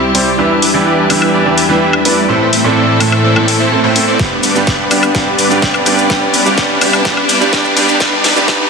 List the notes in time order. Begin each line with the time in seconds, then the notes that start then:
Already playing: C2 C3 G3 C4 E4 G4 C5 E5, riser
0.14 G3 C4 E4 C5 D5, open hi-hat
0.38 E2 E3 G3 B3 D4 E4 G4 B4 E5
0.62 G3 D4 E4 B4 E5, open hi-hat
0.74 E3 G3 B3 D4 E4 G4 B4 D5
0.86 G3 D4 E4 B4 D5
1.09 E3 G3 B3 D4 E4 G4 B4 E5, open hi-hat, high woodblock
1.22 high woodblock
1.34 G3 D4 E4 B4 D5
1.45 E3 B3 D4 E4 G4
1.58 G3 D4 E4 B4 E5, open hi-hat
1.69 E3 G3 B3 D4 E4 G4 B4 E5
1.81 G3 D4 E4 B4 E5
1.93 high woodblock
2.05 G3 B3 D4 E4 B4 D5, open hi-hat
2.28 A2 E3 A3 C4 E4 A4 C5 E5
2.53 A3 C4 E4 C5 E5, open hi-hat
2.64 A2 A3 C4 E4 A4 C5 D5
2.77 A3 C4 E4 C5 D5
3.00 A2 A3 C4 E4 A4 C5 E5, open hi-hat, high woodblock
3.12 high woodblock
3.24 A3 C4 E4 C5 D5
3.36 A2 A3 C4 E4 A4, high woodblock
3.48 open hi-hat
3.60 A3 C4 E4 C5 E5
3.71 A2 A3 C4 E4 A4
3.83 A2 A3 C4 E4 C5 G5
3.95 A3 C4 E4 A4, open hi-hat
4.08 A3 C4 E4 C5 D5
4.19 G2 D3 G3 B3 D4 G4 B4 D5, kick, snare, shaker
4.43 G3 B3 D4 B4 D5, open hi-hat, shaker
4.55 G2 G3 B3 D4 G4 B4 D5, shaker
4.67 G3 B3 D4 B4 D5, kick, snare, shaker
4.90 G2 G3 B3 D4 G4 B4 D5, open hi-hat, high woodblock, shaker
5.03 high woodblock, shaker
5.14 G2 G3 B3 D4 G4 B4 D5, kick, snare, shaker
5.39 G3 B3 D4 B4 D5, open hi-hat, shaker
5.50 G2 G3 B3 D4 G4 B4 D5, shaker
5.62 G3 B3 D4 B4 D5, kick, snare, shaker
5.74 high woodblock, shaker
5.86 G2 G3 B3 D4 G4 B4 D5, open hi-hat, shaker
5.98 shaker
6.09 C2 G2 C3 G3 B3 D4 E4 G4 B4 D5, kick, snare, shaker
6.34 G3 B3 D4 B4 D5, open hi-hat, shaker
6.45 G2 G3 B3 D4 G4 B4 D5, shaker
6.58 G3 B3 D4 B4 D5, kick, snare, shaker
6.81 G2 G3 B3 D4 G4 B4 D5, open hi-hat, high woodblock, shaker
6.93 high woodblock, shaker
7.05 G2 G3 B3 D4 G4 B4 D5, kick, snare, shaker
7.17 high woodblock
7.29 G3 B3 D4 B4 D5, open hi-hat, shaker
7.40 G2 G3 B3 D4 G4 B4 D5, shaker
7.53 G3 B3 D4 B4 D5, kick, snare, shaker
7.65 shaker
7.76 G2 G3 B3 D4 G4 B4 D5, open hi-hat, shaker
7.89 shaker
8.00 E2 G2 E3 G3 B3 D4 B4 D5, kick, snare, shaker
8.24 G3 B3 D4 B4 D5, snare, open hi-hat, shaker
8.36 G2 G3 B3 D4 G4 B4 D5, shaker
8.48 G2 G3 B3 D4 G4 B4 D5, kick, snare, shaker